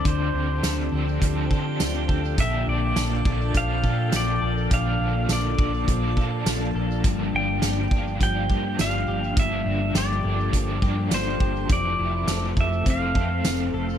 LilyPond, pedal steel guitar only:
\new Staff \with { instrumentName = "Pedal steel guitar" } { \time 4/4 \key g \dorian \tempo 4 = 103 c''2.~ c''8 r8 | e''8 d''4. f''4 d''4 | f''4 d''4. r4. | r8 g''4. g''4 f''4 |
e''4 d''4 r4 c''4 | d''4. e''8 f''2 | }